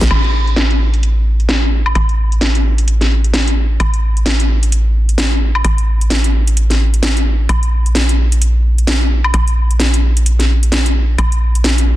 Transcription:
0.01 0.09 A#1 medium
0.01 snare medium
0.01 closed hi-hat soft
0.01 shaker medium
0.11 1.94 A1 medium
0.11 closed hi-hat medium
0.11 crash medium
0.11 high woodblock medium
0.24 closed hi-hat soft
0.47 closed hi-hat soft
0.56 snare loud
0.56 closed hi-hat medium
0.71 closed hi-hat soft
0.94 closed hi-hat soft
1.03 closed hi-hat medium
1.40 closed hi-hat soft
1.49 snare loud
1.49 closed hi-hat medium
1.86 high woodblock medium
1.95 3.78 A1 medium
1.95 closed hi-hat medium
1.95 high woodblock medium
2.09 closed hi-hat soft
2.32 closed hi-hat soft
2.41 snare loud
2.41 closed hi-hat medium
2.55 closed hi-hat soft
2.78 closed hi-hat soft
2.88 closed hi-hat medium
3.01 snare soft
3.01 closed hi-hat soft
3.24 closed hi-hat soft
3.34 snare loud
3.34 closed hi-hat medium
3.48 closed hi-hat soft
3.80 5.63 A1 medium
3.80 closed hi-hat medium
3.80 high woodblock medium
3.94 closed hi-hat soft
4.17 closed hi-hat soft
4.26 snare loud
4.26 closed hi-hat medium
4.40 closed hi-hat soft
4.63 closed hi-hat soft
4.72 closed hi-hat medium
5.09 closed hi-hat soft
5.18 snare loud
5.18 closed hi-hat medium
5.55 high woodblock medium
5.65 7.47 A1 medium
5.65 closed hi-hat medium
5.65 high woodblock medium
5.78 closed hi-hat soft
6.01 closed hi-hat soft
6.10 snare loud
6.10 closed hi-hat medium
6.24 closed hi-hat soft
6.47 closed hi-hat soft
6.57 closed hi-hat medium
6.70 snare soft
6.70 closed hi-hat soft
6.94 closed hi-hat soft
7.03 snare loud
7.03 closed hi-hat medium
7.17 closed hi-hat soft
7.49 9.32 A#1 medium
7.49 closed hi-hat medium
7.49 high woodblock medium
7.63 closed hi-hat soft
7.86 closed hi-hat soft
7.95 snare loud
7.95 closed hi-hat medium
8.09 closed hi-hat soft
8.32 closed hi-hat soft
8.42 closed hi-hat medium
8.78 closed hi-hat soft
8.87 snare loud
8.87 closed hi-hat medium
9.24 high woodblock medium
9.34 11.17 A#1 medium
9.34 closed hi-hat medium
9.34 high woodblock medium
9.48 closed hi-hat soft
9.71 closed hi-hat soft
9.80 snare loud
9.80 closed hi-hat medium
9.94 closed hi-hat soft
10.17 closed hi-hat soft
10.26 closed hi-hat medium
10.39 snare soft
10.39 closed hi-hat soft
10.63 closed hi-hat soft
10.72 snare loud
10.72 closed hi-hat medium
10.86 closed hi-hat soft
11.18 11.96 A#1 medium
11.18 closed hi-hat medium
11.18 high woodblock medium
11.32 closed hi-hat soft
11.55 closed hi-hat soft
11.64 snare loud
11.64 closed hi-hat medium
11.78 closed hi-hat medium

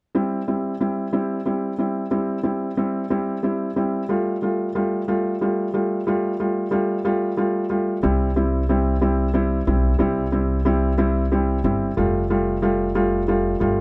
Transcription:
0.15 0.41 G3 soft
0.15 0.41 C4 soft
0.15 0.41 E4 soft
0.48 0.74 G3 soft
0.48 0.74 C4 soft
0.48 0.74 E4 soft
0.80 1.06 G3 soft
0.80 1.07 C4 soft
0.80 1.07 E4 soft
1.13 1.39 G3 soft
1.13 1.39 C4 soft
1.13 1.39 E4 soft
1.46 1.72 G3 soft
1.46 1.72 C4 soft
1.46 1.72 E4 soft
1.78 2.05 G3 soft
1.78 2.05 C4 soft
1.78 2.05 E4 soft
2.11 2.37 G3 soft
2.11 2.38 C4 soft
2.11 2.38 E4 soft
2.43 2.70 G3 soft
2.43 2.70 C4 soft
2.43 2.70 E4 soft
2.77 3.03 G3 soft
2.77 3.04 C4 soft
2.77 3.04 E4 soft
3.10 3.36 G3 soft
3.10 3.36 C4 soft
3.10 3.37 E4 medium
3.43 3.69 G3 soft
3.43 3.69 C4 soft
3.43 3.70 E4 soft
3.76 4.02 G3 soft
3.76 4.02 C4 soft
3.76 4.03 E4 soft
4.09 4.35 G3 soft
4.09 4.35 A3 soft
4.09 4.35 F4 medium
4.42 4.68 G3 soft
4.42 4.68 A3 soft
4.42 4.68 F4 soft
4.75 5.01 G3 soft
4.75 5.01 A3 soft
4.75 5.01 F4 medium
5.08 5.34 G3 soft
5.08 5.34 A3 soft
5.08 5.34 F4 medium
5.41 5.67 G3 soft
5.41 5.67 A3 soft
5.41 5.67 F4 soft
5.74 6.00 G3 soft
5.74 6.00 A3 soft
5.74 6.00 F4 soft
6.07 6.33 G3 medium
6.07 6.33 A3 soft
6.07 6.33 F4 medium
6.40 6.65 G3 soft
6.40 6.65 A3 soft
6.40 6.66 F4 soft
6.71 6.98 G3 medium
6.71 6.98 A3 soft
6.71 6.98 F4 medium
7.05 7.31 G3 medium
7.05 7.31 A3 soft
7.05 7.31 F4 medium
7.37 7.63 G3 soft
7.37 7.64 A3 soft
7.37 7.64 F4 medium
7.70 7.96 G3 soft
7.70 7.96 A3 soft
7.70 7.96 F4 soft
8.03 9.63 C2 medium
8.03 8.29 G3 medium
8.03 8.29 C4 medium
8.03 8.29 E4 medium
8.36 8.62 G3 soft
8.36 8.62 C4 soft
8.36 8.62 E4 medium
8.69 8.95 G3 medium
8.69 8.95 C4 soft
8.69 8.95 E4 medium
9.01 9.28 G3 medium
9.01 9.28 C4 medium
9.01 9.28 E4 medium
9.34 9.60 G3 medium
9.34 9.60 C4 soft
9.34 9.61 E4 medium
9.67 9.98 B1 medium
9.67 9.93 G3 soft
9.67 9.93 C4 soft
9.67 9.93 E4 medium
9.99 11.60 C2 medium
9.99 10.26 G3 medium
9.99 10.26 C4 medium
9.99 10.26 E4 medium
10.32 10.59 G3 soft
10.32 10.59 C4 soft
10.32 10.59 E4 medium
10.65 10.91 G3 medium
10.65 10.92 C4 medium
10.65 10.92 E4 medium
10.98 11.24 G3 medium
10.98 11.24 C4 medium
10.98 11.25 E4 medium
11.32 11.58 G3 medium
11.32 11.58 C4 soft
11.32 11.58 E4 medium
11.64 11.95 G1 medium
11.64 11.90 G3 soft
11.64 11.90 C4 soft
11.64 11.91 E4 soft
11.97 13.57 F1 medium
11.97 12.23 G3 medium
11.97 12.23 A3 soft
11.97 12.23 F4 medium
12.30 12.56 G3 medium
12.30 12.56 A3 soft
12.30 12.56 F4 medium
12.62 12.88 G3 medium
12.62 12.89 A3 medium
12.62 12.89 F4 medium
12.95 13.21 G3 medium
12.95 13.21 A3 medium
12.95 13.21 F4 medium
13.28 13.54 G3 medium
13.28 13.54 A3 medium
13.28 13.54 F4 medium
13.60 13.81 G1 medium
13.60 13.81 G3 soft
13.60 13.81 A3 soft
13.60 13.81 F4 medium

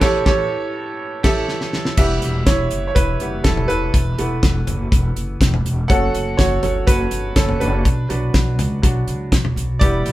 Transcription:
0.00 0.18 A1 medium
0.00 2.00 A2 medium
0.00 0.25 G4 loud
0.00 0.02 A4 medium
0.00 0.18 A4 loud
0.00 1.99 B4 medium
0.00 0.03 C#5 medium
0.00 0.19 C#5 medium
0.00 1.25 E5 medium
0.00 kick medium
0.00 snare loud
0.00 crash medium
0.25 0.43 A1 loud
0.25 0.42 G4 medium
0.25 0.43 A4 medium
0.25 0.43 C#5 medium
0.25 kick loud
0.25 snare loud
1.23 1.41 A1 loud
1.23 1.40 G4 medium
1.23 1.41 A4 medium
1.23 1.41 E5 medium
1.23 kick loud
1.23 snare loud
1.23 crash medium
1.48 snare medium
1.61 snare medium
1.73 snare medium
1.85 snare medium
1.97 2.18 E1 loud
1.97 2.30 E3 medium
1.97 2.31 G3 soft
1.97 2.31 B3 medium
1.97 2.44 G4 medium
1.97 2.48 E5 loud
1.97 kick loud
1.97 crash medium
2.22 2.42 E1 loud
2.22 closed hi-hat medium
2.46 2.67 E1 medium
2.46 2.86 E4 medium
2.46 2.86 C#5 medium
2.46 kick loud
2.46 snare loud
2.46 closed hi-hat medium
2.71 2.92 F#1 medium
2.71 closed hi-hat medium
2.87 2.95 C#5 medium
2.95 3.16 E1 medium
2.95 3.42 E4 medium
2.95 3.41 B4 medium
2.95 kick loud
2.95 closed hi-hat medium
3.20 3.40 F#1 medium
3.20 3.42 E3 soft
3.20 3.43 G3 soft
3.20 3.43 B3 soft
3.20 closed hi-hat medium
3.44 3.65 E1 loud
3.44 3.68 E4 medium
3.44 3.69 A4 medium
3.44 kick loud
3.44 snare loud
3.44 closed hi-hat medium
3.57 floor tom medium
3.68 3.89 E1 medium
3.68 5.61 E4 medium
3.68 5.60 B4 medium
3.68 closed hi-hat medium
3.94 4.14 E1 loud
3.94 kick loud
3.94 closed hi-hat medium
4.18 4.39 E1 medium
4.18 5.85 E3 medium
4.18 5.86 A3 soft
4.18 5.86 B3 medium
4.18 closed hi-hat medium
4.43 4.63 E1 loud
4.43 kick loud
4.43 snare loud
4.43 closed hi-hat medium
4.67 4.87 F#1 medium
4.67 closed hi-hat medium
4.67 floor tom medium
4.92 5.12 E1 loud
4.92 kick loud
4.92 closed hi-hat medium
5.16 5.36 F#1 medium
5.16 closed hi-hat medium
5.40 5.61 E1 loud
5.40 kick loud
5.40 snare loud
5.40 closed hi-hat medium
5.54 floor tom medium
5.65 5.85 E1 medium
5.65 closed hi-hat medium
5.88 6.10 F#1 medium
5.88 6.61 F#3 medium
5.88 6.61 A3 medium
5.88 6.62 C#4 medium
5.88 6.35 A4 medium
5.88 6.39 F#5 loud
5.88 kick loud
5.88 closed hi-hat medium
6.14 6.34 F#1 medium
6.14 closed hi-hat medium
6.37 6.59 F#1 medium
6.37 6.84 F#4 medium
6.37 6.88 C#5 medium
6.37 kick loud
6.37 snare loud
6.37 closed hi-hat medium
6.62 6.83 G1 medium
6.62 6.85 F#3 soft
6.62 6.85 A3 soft
6.62 6.85 C#4 soft
6.62 closed hi-hat medium
6.62 floor tom medium
6.87 7.07 F#1 medium
6.87 7.33 F#4 medium
6.87 7.33 B4 medium
6.87 kick loud
6.87 closed hi-hat medium
7.11 7.32 G1 medium
7.11 closed hi-hat medium
7.36 7.56 F#1 medium
7.36 7.60 C#4 medium
7.36 7.61 A4 medium
7.36 kick loud
7.36 snare loud
7.36 closed hi-hat medium
7.49 floor tom medium
7.60 7.81 F#1 loud
7.60 8.09 D4 medium
7.60 9.52 B4 medium
7.60 closed hi-hat medium
7.85 8.05 B1 loud
7.85 kick loud
7.85 closed hi-hat medium
8.09 8.30 B1 medium
8.09 8.81 F#3 soft
8.09 8.82 B3 soft
8.09 8.82 D4 medium
8.09 closed hi-hat medium
8.34 8.59 B1 medium
8.34 kick loud
8.34 snare loud
8.34 closed hi-hat medium
8.59 8.79 C#2 medium
8.59 closed hi-hat medium
8.59 floor tom medium
8.82 9.03 B1 loud
8.82 9.05 F#3 soft
8.82 9.05 B3 soft
8.82 9.05 D4 soft
8.82 kick loud
8.82 closed hi-hat medium
9.07 9.28 C#2 medium
9.07 closed hi-hat medium
9.32 9.52 B1 medium
9.32 kick loud
9.32 snare loud
9.32 closed hi-hat medium
9.45 floor tom medium
9.56 9.76 B1 medium
9.56 closed hi-hat medium
9.79 10.01 E1 loud
9.79 10.12 G3 medium
9.79 10.12 B3 medium
9.79 10.12 E4 medium
9.79 10.12 G4 medium
9.79 10.12 D5 medium
9.79 kick loud
9.79 closed hi-hat medium
10.05 10.12 E1 medium
10.05 closed hi-hat medium

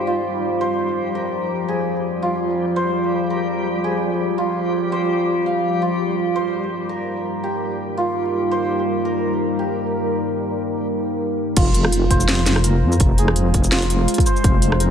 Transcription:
0.00 1.23 G4 medium
0.00 0.38 A#4 medium
0.00 0.60 C5 medium
0.00 5.78 C5 medium
0.07 5.78 F3 medium
0.07 10.13 G3 medium
0.07 2.22 F4 medium
0.07 5.78 F4 medium
0.07 10.13 G4 medium
0.61 2.76 C5 medium
1.15 3.30 A#4 medium
1.68 3.84 G#4 medium
2.22 4.38 F4 medium
2.76 4.92 C5 loud
3.30 6.13 A#4 medium
3.84 6.87 G#4 medium
4.38 5.81 F4 medium
4.92 6.35 C5 medium
5.46 7.68 F5 medium
5.82 11.53 G3 medium
5.82 11.53 D#4 medium
5.82 7.97 F4 medium
5.82 11.53 A#4 medium
6.36 8.51 C5 medium
6.89 9.05 A#4 medium
7.44 9.59 G4 medium
7.97 11.34 F4 medium
8.51 11.15 C5 medium
9.05 11.88 A#4 medium
9.59 12.73 G4 medium
11.57 12.10 F1 loud
11.57 14.90 G#3 medium
11.57 13.72 F4 medium
11.57 14.42 F4 medium
11.57 14.90 C5 medium
11.57 kick loud
11.57 closed hi-hat medium
11.57 crash loud
11.74 closed hi-hat medium
11.85 cross-stick medium
11.92 closed hi-hat medium
12.11 12.84 F1 loud
12.11 14.26 C5 loud
12.11 kick medium
12.11 closed hi-hat medium
12.20 shaker medium
12.28 snare loud
12.28 closed hi-hat medium
12.46 snare medium
12.46 closed hi-hat medium
12.46 shaker medium
12.56 cross-stick medium
12.64 14.80 A#4 medium
12.64 closed hi-hat medium
12.83 12.99 F2 loud
12.92 shaker soft
13.00 13.53 F1 loud
13.00 kick loud
13.00 closed hi-hat medium
13.18 14.90 G#4 medium
13.18 closed hi-hat medium
13.28 cross-stick medium
13.36 closed hi-hat medium
13.54 14.07 F1 loud
13.54 kick medium
13.54 closed hi-hat medium
13.64 shaker medium
13.72 14.90 F4 medium
13.72 snare loud
13.72 closed hi-hat medium
13.82 shaker soft
13.90 closed hi-hat medium
14.08 closed hi-hat medium
14.14 closed hi-hat medium
14.18 kick loud
14.18 closed hi-hat medium
14.26 14.90 C5 loud
14.26 shaker medium
14.36 shaker soft
14.44 14.90 F1 loud
14.44 14.90 D#4 medium
14.44 kick loud
14.44 closed hi-hat medium
14.62 closed hi-hat medium
14.72 cross-stick medium
14.80 14.90 A#4 medium
14.80 closed hi-hat medium

